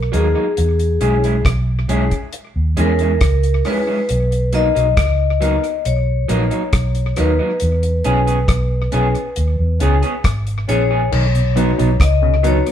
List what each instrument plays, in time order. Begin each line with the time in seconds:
Already playing: vibraphone A#4
0.12 fingered electric bass D#2, clean electric guitar F#3 A#3 D#4, grand piano B3 D#4 A#4, vibraphone G#4, closed hi-hat
0.35 clean electric guitar F#3 A#3 D#4
0.57 fingered electric bass E2, closed hi-hat
0.79 closed hi-hat
1.00 fingered electric bass B1, clean electric guitar G#3 C#4 E4, grand piano C#4 E4 G#4, closed hi-hat
1.24 clean electric guitar G#3 C#4 E4, closed hi-hat
1.45 fingered electric bass B1, kick, cross-stick, closed hi-hat
1.88 fingered electric bass B1, clean electric guitar G#3 C#4 E4, grand piano C#4 E4 G#4, closed hi-hat
2.11 kick, closed hi-hat
2.33 closed hi-hat
2.56 fingered electric bass D#2
2.76 fingered electric bass E2, clean electric guitar G#3 C#4 E4, grand piano C#4 E4 G#4, vibraphone A#4, closed hi-hat
2.99 clean electric guitar G#3 C#4 E4, closed hi-hat
3.21 fingered electric bass C#2, kick, cross-stick, closed hi-hat
3.43 closed hi-hat
3.64 clean electric guitar G#3 C#4 E4, grand piano C#4 E4 G#4, vibraphone B4, cross-stick, open hi-hat
3.87 clean electric guitar G#3 C#4 E4
4.09 fingered electric bass B1, closed hi-hat
4.32 closed hi-hat
4.53 clean electric guitar F#3 A#3 D#4, grand piano B3 D#4 A#4, vibraphone D#5, closed hi-hat
4.75 fingered electric bass B1, clean electric guitar F#3 A#3 D#4, closed hi-hat
4.97 fingered electric bass C#2, kick, cross-stick, closed hi-hat
5.40 clean electric guitar F#3 A#3 D#4, grand piano B3 D#4 A#4, closed hi-hat
5.64 closed hi-hat
5.85 fingered electric bass B1, vibraphone C#5, closed hi-hat
6.28 fingered electric bass A#1, clean electric guitar F#3 A#3 D#4, grand piano B3 D#4 A#4, closed hi-hat
6.51 clean electric guitar F#3 A#3 D#4, closed hi-hat
6.73 fingered electric bass B1, kick, cross-stick, closed hi-hat
6.95 closed hi-hat
7.16 fingered electric bass D#2, clean electric guitar F#3 A#3 D#4, grand piano B3 D#4 A#4, vibraphone B4, cross-stick, closed hi-hat
7.39 clean electric guitar F#3 A#3 D#4
7.60 fingered electric bass E2, closed hi-hat
7.83 closed hi-hat
8.04 fingered electric bass B1, clean electric guitar B3 C#4 G#4, grand piano C#4 E4 G#4, closed hi-hat
8.27 clean electric guitar B3 C#4 G#4, closed hi-hat
8.48 fingered electric bass B1, kick, cross-stick, closed hi-hat
8.92 fingered electric bass B1, clean electric guitar B3 C#4 G#4, grand piano C#4 E4 G#4, closed hi-hat
9.15 closed hi-hat
9.36 fingered electric bass D#2, closed hi-hat
9.59 fingered electric bass E2
9.79 fingered electric bass C#2, clean electric guitar B3 C#4 G#4, grand piano C#4 E4 G#4, closed hi-hat
10.02 clean electric guitar B3 C#4 G#4, closed hi-hat
10.24 fingered electric bass G#1, kick, cross-stick, closed hi-hat
10.47 closed hi-hat
10.67 fingered electric bass A#1, clean electric guitar B3 C#4 G#4, grand piano C#4 E4 G#4, vibraphone C#5, closed hi-hat
10.91 clean electric guitar B3 C#4 G#4
11.12 fingered electric bass B1, clav D#3, crash
11.34 tonewheel organ B2, closed hi-hat
11.56 clav B2, tonewheel organ D#3 F#3 B3, clean electric guitar F#3 B3 D#4, grand piano B3 D#4 F#4, closed hi-hat
11.78 fingered electric bass B1, tonewheel organ B2, clav B2, clean electric guitar F#3 B3 D#4, closed hi-hat
12.00 fingered electric bass C#2, vibraphone D#5, kick, cross-stick, closed hi-hat
12.22 tonewheel organ B2, clav C#3, grand piano D#4 F#4
12.43 tonewheel organ D#3 F#3 B3, clav D#3, clean electric guitar F#3 B3 D#4, grand piano B3 D#4 F#4, closed hi-hat
12.47 vibraphone C#5
12.66 tonewheel organ F#3 B3, closed hi-hat